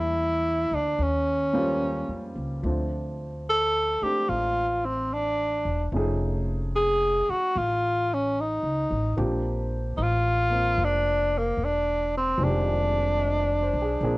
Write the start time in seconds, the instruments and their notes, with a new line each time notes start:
Already playing: upright bass E2, grand piano E3 G3 A#3 D4 E4, tenor saxophone E4
0.71 upright bass D2, tenor saxophone D4
0.99 upright bass D#2, tenor saxophone C#4
1.53 grand piano G3 A#3 C#4 F4 C5
2.08 upright bass F2
2.35 upright bass C#2
2.62 upright bass D2, grand piano F3 A3 C4 D4
2.68 grand piano F4
3.50 tenor saxophone A4
4.02 grand piano A3 C4 D4, tenor saxophone G4, muted upright bass stroke
4.29 upright bass A1, tenor saxophone F4
4.85 tenor saxophone C4
5.14 tenor saxophone D4
5.65 upright bass E1
5.92 upright bass F1, grand piano F3 A3 C#4 D#4
5.96 grand piano G#4
6.76 tenor saxophone G#4
7.29 tenor saxophone F#4, muted upright bass stroke
7.56 upright bass A1, tenor saxophone F4
8.14 tenor saxophone C#4
8.40 tenor saxophone D#4
8.63 upright bass C#2
8.91 upright bass A1
9.17 upright bass A#1, grand piano F3 A#3 C4 D4 G4
9.97 upright bass A1, tenor saxophone D#4
10.02 tenor saxophone F4
10.50 grand piano A#3 C4 F4
10.78 upright bass F1
10.84 tenor saxophone D4
11.38 tenor saxophone A#3
11.57 upright bass E1
11.65 tenor saxophone D4
12.18 tenor saxophone C4
12.37 upright bass F1, grand piano D#3 F3 G#3 C4
12.42 tenor saxophone D4, grand piano G4
13.19 grand piano D#5
13.40 grand piano D5
13.62 grand piano C5
13.73 upright bass B1
13.82 grand piano G#4
14.01 upright bass A#1, grand piano F3 A#3 C4 D4 G#4